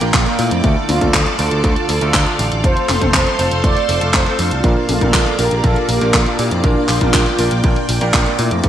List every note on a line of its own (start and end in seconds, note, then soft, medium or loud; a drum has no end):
0.00 0.12 A#1 medium
0.00 0.23 A#2 loud
0.00 0.60 A#3 medium
0.00 0.23 A#3 loud
0.00 0.23 D4 loud
0.00 0.23 F4 loud
0.00 0.23 A#4 loud
0.00 2.60 D5 medium
0.00 0.62 G5 medium
0.00 2.60 D6 medium
0.00 closed hi-hat medium
0.14 0.25 A#1 loud
0.14 kick loud
0.14 clap loud
0.14 closed hi-hat medium
0.26 0.61 A#2 medium
0.26 0.61 A#3 medium
0.26 0.61 D4 medium
0.26 0.61 F4 medium
0.26 0.61 A#4 medium
0.26 closed hi-hat soft
0.39 0.50 A#2 medium
0.39 0.86 A3 medium
0.39 0.90 E4 medium
0.39 open hi-hat medium
0.51 0.62 F2 medium
0.51 closed hi-hat medium
0.64 0.75 D2 loud
0.64 0.98 D3 medium
0.64 0.98 A3 medium
0.64 0.98 D4 medium
0.64 0.98 F4 medium
0.64 0.98 A4 medium
0.64 2.62 A4 medium
0.64 6.60 F5 medium
0.64 kick loud
0.64 closed hi-hat medium
0.89 1.00 D2 loud
0.89 1.36 D4 medium
0.89 1.39 F4 loud
0.89 open hi-hat loud
0.89 high tom medium
1.01 1.12 D2 medium
1.01 1.21 D3 medium
1.01 1.21 A3 medium
1.01 1.21 D4 medium
1.01 1.21 F4 medium
1.01 1.21 A4 medium
1.01 kick medium
1.01 closed hi-hat medium
1.01 high tom medium
1.14 1.25 D2 loud
1.14 kick loud
1.14 clap loud
1.14 closed hi-hat medium
1.26 closed hi-hat soft
1.39 1.50 D2 medium
1.39 1.58 D3 medium
1.39 1.58 A3 medium
1.39 1.58 D4 medium
1.39 1.58 F4 medium
1.39 1.63 F4 medium
1.39 1.58 A4 loud
1.39 1.62 A4 loud
1.39 open hi-hat medium
1.51 1.62 D2 medium
1.51 closed hi-hat medium
1.64 1.75 D2 loud
1.64 1.83 D3 medium
1.64 1.83 A3 medium
1.64 1.83 D4 medium
1.64 1.83 F4 medium
1.64 2.35 F4 medium
1.64 2.35 A4 loud
1.64 1.83 A4 medium
1.64 kick loud
1.64 closed hi-hat medium
1.76 closed hi-hat soft
1.89 2.00 D2 loud
1.89 open hi-hat loud
2.01 2.12 D2 medium
2.01 2.23 D3 loud
2.01 2.23 A3 medium
2.01 2.23 D4 loud
2.01 2.23 F4 loud
2.01 2.23 A4 loud
2.01 closed hi-hat medium
2.14 2.25 D2 loud
2.14 kick loud
2.14 clap loud
2.14 closed hi-hat medium
2.26 2.61 D3 medium
2.26 2.61 A3 medium
2.26 2.61 D4 medium
2.26 2.61 F4 medium
2.26 2.61 A4 medium
2.26 closed hi-hat soft
2.39 2.50 A1 medium
2.39 open hi-hat medium
2.52 2.62 A1 medium
2.52 closed hi-hat medium
2.63 2.75 F1 loud
2.63 2.98 A3 medium
2.63 2.98 C4 medium
2.63 2.98 F4 medium
2.63 4.62 A4 medium
2.63 2.98 A4 medium
2.63 2.88 A4 medium
2.63 4.62 C5 medium
2.63 2.88 C5 loud
2.63 4.62 C6 medium
2.63 kick loud
2.63 closed hi-hat medium
2.77 closed hi-hat soft
2.89 3.00 F1 medium
2.89 3.60 A4 medium
2.89 3.66 C5 loud
2.89 clap medium
2.89 open hi-hat loud
2.89 high tom medium
3.01 3.12 F1 medium
3.01 3.21 A3 medium
3.01 3.21 C4 medium
3.01 3.21 F4 medium
3.01 3.21 A4 medium
3.01 kick medium
3.01 closed hi-hat medium
3.01 high tom medium
3.14 3.25 F1 loud
3.14 kick loud
3.14 clap loud
3.14 closed hi-hat medium
3.27 closed hi-hat soft
3.39 3.50 F1 medium
3.39 3.58 A3 medium
3.39 3.58 C4 medium
3.39 3.58 F4 medium
3.39 3.58 A4 medium
3.39 open hi-hat medium
3.51 3.62 F1 medium
3.51 closed hi-hat medium
3.64 3.75 F1 loud
3.64 3.83 A3 medium
3.64 3.83 C4 medium
3.64 3.83 F4 medium
3.64 3.83 A4 medium
3.64 4.11 A4 medium
3.64 4.15 D5 loud
3.64 kick loud
3.64 closed hi-hat medium
3.77 closed hi-hat soft
3.89 4.00 F1 loud
3.89 3.99 A3 medium
3.89 3.99 C4 medium
3.89 3.99 F4 medium
3.89 3.99 A4 medium
3.89 open hi-hat loud
4.01 4.12 F1 medium
4.01 4.23 A3 medium
4.01 4.23 C4 medium
4.01 4.23 F4 medium
4.01 4.23 A4 loud
4.01 closed hi-hat soft
4.14 4.25 F1 loud
4.14 4.38 A4 medium
4.14 4.40 C5 loud
4.14 kick loud
4.14 clap loud
4.14 closed hi-hat medium
4.26 4.61 A3 loud
4.26 4.61 C4 medium
4.26 4.61 F4 medium
4.26 4.61 A4 loud
4.26 closed hi-hat soft
4.39 4.50 F2 loud
4.39 4.86 D4 medium
4.39 4.86 F4 loud
4.39 open hi-hat medium
4.51 4.62 C2 medium
4.51 closed hi-hat medium
4.64 4.75 A#1 loud
4.64 4.98 A#2 medium
4.64 8.60 A#3 medium
4.64 4.98 A#3 medium
4.64 4.98 D4 medium
4.64 4.98 F4 medium
4.64 4.98 A#4 medium
4.64 8.69 D5 medium
4.64 8.69 D6 medium
4.64 kick loud
4.64 closed hi-hat medium
4.89 5.00 A#1 medium
4.89 5.36 F4 medium
4.89 5.35 A4 loud
4.89 open hi-hat loud
4.89 high tom medium
5.01 5.12 A#1 medium
5.01 5.21 A#2 medium
5.01 5.21 A#3 medium
5.01 5.21 D4 medium
5.01 5.21 F4 medium
5.01 5.21 A#4 medium
5.01 kick medium
5.01 closed hi-hat medium
5.01 high tom medium
5.14 5.25 A#1 loud
5.14 kick loud
5.14 clap loud
5.14 closed hi-hat medium
5.26 closed hi-hat soft
5.39 5.50 A#1 medium
5.39 5.58 A#2 medium
5.39 5.58 A#3 medium
5.39 5.58 D4 medium
5.39 5.58 F4 medium
5.39 5.62 G4 medium
5.39 5.65 A#4 loud
5.39 5.58 A#4 loud
5.39 open hi-hat loud
5.51 5.62 A#1 medium
5.51 closed hi-hat medium
5.64 5.75 A#1 loud
5.64 5.83 A#2 medium
5.64 5.83 A#3 medium
5.64 5.83 D4 medium
5.64 5.83 F4 medium
5.64 5.88 F4 medium
5.64 5.87 A4 loud
5.64 5.83 A#4 medium
5.64 kick loud
5.64 closed hi-hat medium
5.76 closed hi-hat soft
5.89 6.00 A#1 loud
5.89 6.12 G4 medium
5.89 6.15 A#4 loud
5.89 open hi-hat loud
6.01 6.12 A#1 medium
6.01 6.23 A#2 loud
6.01 6.23 A#3 loud
6.01 6.23 D4 loud
6.01 6.23 F4 loud
6.01 6.23 A#4 loud
6.01 closed hi-hat soft
6.14 6.25 A#1 loud
6.14 6.37 F4 medium
6.14 6.37 A4 loud
6.14 kick loud
6.14 clap loud
6.14 closed hi-hat medium
6.26 6.61 A#2 medium
6.26 6.61 A#3 medium
6.26 6.61 D4 medium
6.26 6.61 F4 medium
6.26 6.61 A#4 medium
6.26 closed hi-hat soft
6.39 6.50 A#2 medium
6.39 6.62 E4 medium
6.39 6.62 G4 medium
6.39 open hi-hat medium
6.51 6.62 F2 medium
6.51 closed hi-hat medium
6.64 6.75 A#1 loud
6.64 6.98 A#2 medium
6.64 6.98 A#3 medium
6.64 6.98 D4 medium
6.64 6.87 D4 medium
6.64 6.98 F4 medium
6.64 6.88 F4 loud
6.64 6.98 A#4 medium
6.64 8.62 G5 medium
6.64 kick loud
6.64 closed hi-hat medium
6.89 7.00 A#1 medium
6.89 7.85 D4 medium
6.89 7.85 F4 medium
6.89 clap medium
6.89 open hi-hat loud
7.01 7.12 A#1 medium
7.01 7.21 A#2 medium
7.01 7.21 A#3 medium
7.01 7.21 D4 medium
7.01 7.21 F4 medium
7.01 7.21 A#4 medium
7.01 kick medium
7.01 closed hi-hat medium
7.01 high tom medium
7.14 7.25 A#1 loud
7.14 kick loud
7.14 clap loud
7.14 closed hi-hat medium
7.26 closed hi-hat soft
7.38 7.50 A#1 medium
7.38 7.58 A#2 medium
7.38 7.58 A#3 medium
7.38 7.58 D4 medium
7.38 7.58 F4 medium
7.38 7.58 A#4 loud
7.38 open hi-hat medium
7.51 7.62 A#1 medium
7.51 closed hi-hat medium
7.64 7.75 A#1 loud
7.64 7.83 A#2 medium
7.64 7.83 A#3 medium
7.64 7.83 D4 medium
7.64 7.83 F4 medium
7.64 7.83 A#4 medium
7.64 kick loud
7.64 closed hi-hat medium
7.76 closed hi-hat soft
7.89 8.00 A#1 loud
7.89 open hi-hat loud
8.01 8.12 A#1 medium
8.01 8.22 A#2 loud
8.01 8.22 A#3 loud
8.01 8.22 D4 loud
8.01 8.22 F4 loud
8.01 8.22 A#4 loud
8.01 closed hi-hat medium
8.14 8.25 A#1 loud
8.14 kick loud
8.14 clap loud
8.14 closed hi-hat medium
8.26 8.61 A#2 medium
8.26 8.61 A#3 medium
8.26 8.61 D4 medium
8.26 8.61 F4 medium
8.26 8.61 A#4 medium
8.26 closed hi-hat soft
8.39 8.50 A#2 medium
8.39 8.69 A3 medium
8.39 8.69 E4 medium
8.39 open hi-hat loud
8.51 8.62 F2 medium
8.51 closed hi-hat medium
8.63 8.69 D2 loud
8.63 8.69 D3 medium
8.63 8.69 A3 medium
8.63 8.69 D4 medium
8.63 8.69 F4 medium
8.63 8.69 A4 medium
8.63 8.69 F5 medium
8.63 kick loud
8.63 closed hi-hat medium